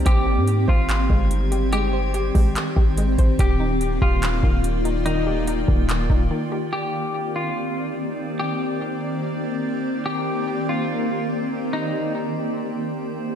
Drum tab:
HH |x-x-x-xx|x-xox-xx|x-x-x-xx|x-x-x---|
CP |----x---|----x---|----x---|----x---|
BD |o--o-o--|---o-o-o|o--o-o--|---o-o--|

HH |--------|--------|--------|--------|
CP |--------|--------|--------|--------|
BD |--------|--------|--------|--------|